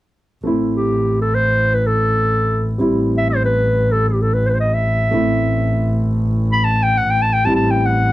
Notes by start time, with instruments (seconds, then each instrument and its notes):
0.43 double bass A1, upright piano A3 C4 E4
0.77 clarinet G4
1.22 clarinet A4
1.35 clarinet C5
1.74 clarinet B4
1.87 clarinet A4
2.78 double bass A1, upright piano G3 C4 E4
3.18 clarinet E5
3.30 clarinet C5
3.45 clarinet B4
3.92 clarinet A4
4.08 clarinet G4
4.22 clarinet A4
4.34 clarinet B4
4.46 clarinet B4 C5
4.54 clarinet C5
4.60 clarinet D#5
4.74 clarinet E5
5.11 double bass A1, upright piano A3 C4 E4
6.52 clarinet B5
6.64 clarinet A5
6.83 clarinet G5
6.98 clarinet F#5
7.10 clarinet G5
7.22 clarinet A5
7.33 clarinet G5
7.45 double bass A1, upright piano G3 C4 E4, clarinet A5
7.56 clarinet A5
7.71 clarinet G5
7.86 clarinet F#5